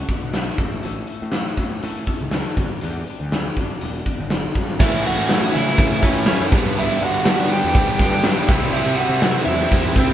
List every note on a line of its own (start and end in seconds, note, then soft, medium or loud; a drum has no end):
0.00 0.33 D3 medium
0.00 0.31 F#3 medium
0.00 0.10 A3 medium
0.09 0.32 A3 soft
0.09 0.33 D4 medium
0.09 0.34 F#4 medium
0.09 kick medium
0.09 closed hi-hat medium
0.22 0.50 B1 medium
0.33 0.56 F#3 medium
0.33 0.57 A3 medium
0.33 0.57 D4 medium
0.33 0.57 F#4 medium
0.33 snare medium
0.33 closed hi-hat medium
0.57 0.77 A1 medium
0.57 0.81 A2 medium
0.57 0.83 E3 medium
0.57 0.83 A3 medium
0.57 0.84 C#4 medium
0.57 0.84 A4 medium
0.57 kick medium
0.57 closed hi-hat medium
0.83 1.03 A1 medium
0.83 1.33 A2 medium
0.83 1.31 E3 medium
0.83 1.09 A3 medium
0.83 1.07 C#4 medium
0.83 1.06 A4 medium
0.83 closed hi-hat medium
1.07 1.33 A3 soft
1.07 1.33 C#4 medium
1.07 1.34 A4 medium
1.07 closed hi-hat soft
1.22 1.50 A2 medium
1.32 1.82 E3 medium
1.32 1.59 A3 medium
1.32 1.58 C#4 medium
1.32 snare medium
1.32 closed hi-hat medium
1.36 1.56 A4 medium
1.57 1.76 A2 medium
1.57 1.82 A3 medium
1.57 1.83 C#4 medium
1.57 1.84 A4 medium
1.57 kick medium
1.57 closed hi-hat soft
1.82 2.32 A2 medium
1.82 2.02 A2 medium
1.82 2.31 E3 medium
1.82 2.09 A3 medium
1.82 2.08 C#4 medium
1.82 2.07 A4 medium
1.82 closed hi-hat medium
2.07 2.32 A3 medium
2.07 2.33 C#4 medium
2.07 2.33 A4 medium
2.07 kick medium
2.07 closed hi-hat medium
2.21 2.40 C#2 medium
2.31 2.55 E3 medium
2.31 2.56 A3 medium
2.31 2.57 C#4 medium
2.31 2.57 A4 medium
2.31 snare medium
2.31 closed hi-hat medium
2.57 2.66 G1 medium
2.57 2.81 G2 medium
2.57 2.82 D3 medium
2.57 2.82 G3 medium
2.57 2.83 B3 medium
2.57 2.83 D4 medium
2.57 2.84 G4 medium
2.57 kick medium
2.57 closed hi-hat medium
2.81 3.02 E2 medium
2.81 3.32 G2 medium
2.81 3.32 D3 medium
2.81 3.10 G3 medium
2.81 3.09 B3 medium
2.81 3.08 D4 medium
2.81 3.07 G4 medium
2.81 closed hi-hat medium
3.07 3.33 B3 soft
3.07 3.34 D4 medium
3.07 3.34 G4 medium
3.07 closed hi-hat soft
3.11 3.32 G3 soft
3.20 3.48 D2 medium
3.32 3.59 G3 medium
3.32 3.58 B3 medium
3.32 3.58 D4 medium
3.32 3.57 G4 medium
3.32 snare medium
3.32 closed hi-hat medium
3.45 snare soft
3.57 3.66 G1 medium
3.57 3.82 G3 medium
3.57 3.83 B3 medium
3.57 3.84 D4 medium
3.57 3.84 G4 medium
3.57 kick medium
3.57 closed hi-hat medium
3.81 4.00 E1 medium
3.81 4.31 G2 medium
3.81 4.32 D3 medium
3.81 4.08 G3 medium
3.81 4.08 B3 medium
3.81 4.07 D4 medium
3.81 closed hi-hat medium
3.85 4.06 G4 medium
4.06 4.31 G3 medium
4.06 4.32 B3 medium
4.06 4.33 D4 medium
4.06 4.33 G4 medium
4.06 kick medium
4.06 closed hi-hat medium
4.19 4.47 G1 medium
4.30 4.79 G3 medium
4.30 4.80 B3 medium
4.30 4.80 D4 medium
4.30 snare loud
4.30 closed hi-hat medium
4.35 4.81 G4 medium
4.55 4.74 G2 medium
4.55 kick medium
4.55 closed hi-hat medium
4.80 4.89 A2 loud
4.80 5.29 A2 medium
4.80 5.28 E3 loud
4.80 5.07 A3 loud
4.80 5.06 C#4 loud
4.80 5.04 E4 medium
4.80 5.05 E4 loud
4.80 5.05 E5 loud
4.80 kick loud
4.80 crash loud
4.93 5.02 A2 medium
5.05 5.29 A3 medium
5.05 5.30 C#4 medium
5.05 5.30 E4 medium
5.05 5.51 F#4 medium
5.05 5.53 F#5 loud
5.18 5.45 A2 medium
5.29 5.78 E3 medium
5.29 5.55 A3 medium
5.29 5.53 C#4 medium
5.29 5.52 E4 medium
5.29 snare loud
5.29 open hi-hat medium
5.53 5.73 C#3 medium
5.53 5.79 A3 medium
5.53 5.79 C#4 medium
5.53 5.79 E4 medium
5.53 6.01 E4 medium
5.53 6.04 E5 loud
5.67 snare soft
5.78 6.28 A2 loud
5.78 5.97 C#3 medium
5.78 6.26 E3 loud
5.78 6.03 A3 loud
5.78 6.02 C#4 loud
5.78 6.01 E4 loud
5.78 kick loud
5.78 open hi-hat medium
6.02 6.31 A2 medium
6.02 6.27 E3 medium
6.02 6.27 A3 medium
6.02 6.27 C#4 medium
6.02 6.50 C#4 medium
6.02 6.28 E4 medium
6.02 6.49 C#5 medium
6.02 kick medium
6.06 6.26 A2 medium
6.26 6.50 A2 medium
6.26 6.51 E3 medium
6.26 6.51 A3 medium
6.26 6.51 C#4 medium
6.26 6.51 E4 medium
6.26 snare loud
6.26 open hi-hat medium
6.41 6.50 F#2 medium
6.52 6.90 G2 loud
6.52 6.75 G2 medium
6.52 6.76 D3 medium
6.52 6.77 G3 medium
6.52 6.77 B3 loud
6.52 6.78 D4 medium
6.52 kick loud
6.77 7.26 G2 loud
6.77 7.24 D3 loud
6.77 7.04 G3 loud
6.77 7.02 B3 loud
6.77 7.00 D4 loud
6.77 7.01 E4 medium
6.77 7.03 E5 medium
6.77 open hi-hat medium
7.01 7.20 G2 medium
7.01 7.25 G3 medium
7.01 7.25 B3 medium
7.01 7.26 D4 medium
7.01 7.48 F#4 medium
7.01 7.52 F#5 medium
7.25 7.74 D3 medium
7.25 7.52 G3 medium
7.25 7.35 G3 loud
7.25 7.50 B3 medium
7.25 7.48 D4 medium
7.25 snare loud
7.25 open hi-hat medium
7.38 7.57 G3 loud
7.50 7.74 G3 medium
7.50 7.75 B3 medium
7.50 7.76 D4 medium
7.50 7.96 G4 loud
7.50 7.97 G5 loud
7.63 7.73 E2 medium
7.63 snare soft
7.74 7.84 D2 loud
7.74 8.24 G2 loud
7.74 8.23 D3 loud
7.74 8.01 G3 loud
7.74 7.99 B3 loud
7.74 7.98 D4 loud
7.74 kick loud
7.74 open hi-hat medium
7.99 8.09 G2 medium
7.99 8.49 G2 medium
7.99 8.48 D3 medium
7.99 8.24 G3 medium
7.99 8.25 B3 medium
7.99 8.25 D4 medium
7.99 8.46 G4 medium
7.99 8.46 G5 loud
7.99 kick loud
7.99 snare soft
8.12 8.30 G2 loud
8.24 8.47 G2 loud
8.24 8.47 D3 medium
8.24 8.48 G3 medium
8.24 8.48 B3 medium
8.24 8.48 D4 medium
8.24 snare loud
8.24 open hi-hat medium
8.48 8.67 C2 medium
8.48 8.72 C3 medium
8.48 8.73 G3 medium
8.48 8.75 C4 medium
8.48 8.76 E4 medium
8.48 kick loud
8.48 crash loud
8.73 8.82 C2 loud
8.73 9.21 C3 loud
8.73 9.00 G3 loud
8.73 8.99 C4 loud
8.73 8.97 E4 medium
8.73 8.99 E4 loud
8.73 8.96 E5 loud
8.85 8.94 C3 medium
8.96 9.24 E4 medium
8.96 9.44 F#4 medium
8.96 9.44 F#5 loud
9.00 9.21 G3 medium
9.00 9.23 C4 medium
9.09 9.37 C3 loud
9.22 9.69 C3 medium
9.22 9.48 G3 loud
9.22 9.47 C4 medium
9.22 9.46 E4 loud
9.22 snare loud
9.22 open hi-hat medium
9.45 9.65 E2 medium
9.45 9.71 C4 medium
9.45 9.72 E4 medium
9.45 9.93 E4 medium
9.45 9.97 E5 loud
9.49 9.70 G3 medium
9.59 snare soft
9.71 9.90 E2 medium
9.71 10.13 C3 loud
9.71 9.97 G3 loud
9.71 9.96 C4 loud
9.71 9.96 E4 loud
9.71 kick loud
9.71 open hi-hat medium
9.94 10.13 C2 medium
9.94 10.13 C4 medium
9.94 10.13 E4 medium
9.94 10.13 C5 medium
9.94 kick loud
9.98 10.13 C3 medium
9.98 10.13 G3 medium